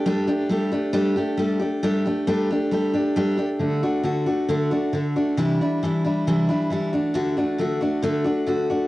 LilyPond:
\new Staff \with { instrumentName = "Steel-string acoustic guitar" } { \time 4/4 \key d \major \tempo 4 = 135 <g a d' g'>8 <a d' g'>8 <g a d' g'>8 <a d' g'>8 <g a d' g'>8 <a d' g'>8 <g a d' g'>8 <a d' g'>8 | <g a d' g'>8 <a d' g'>8 <g a d' g'>8 <a d' g'>8 <g a d' g'>8 <a d' g'>8 <g a d' g'>8 <a d' g'>8 | <d a d' fis'>8 <a d' fis'>8 <d a d' fis'>8 <a d' fis'>8 <d a d' fis'>8 <a d' fis'>8 <d a d' fis'>8 <a d' fis'>8 | <c e g d' e'>8 <g d' e'>8 <e g d' e'>8 <g d' e'>8 <c e g d' e'>8 <g d' e'>8 <e g d' e'>8 <a d' fis'>8 |
<d a d' fis'>8 <a d' fis'>8 <d a d' fis'>8 <a d' fis'>8 <d a d' fis'>8 <a d' fis'>8 <d a d' fis'>8 <a d' fis'>8 | }